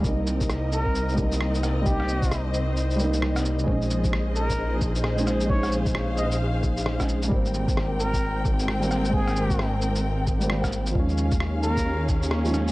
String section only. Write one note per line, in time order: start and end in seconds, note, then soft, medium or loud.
0.05 3.64 C4 medium
0.05 1.84 A#4 medium
0.05 3.64 D#5 medium
1.86 3.66 C5 medium
3.68 7.28 G#4 medium
3.68 7.28 C5 medium
3.68 5.48 D#5 medium
5.50 7.30 F5 loud
7.32 10.92 C4 medium
7.32 10.92 A#4 medium
7.32 10.92 G5 loud
10.96 12.72 C#4 medium
10.96 12.72 G#4 medium
10.96 12.72 F5 medium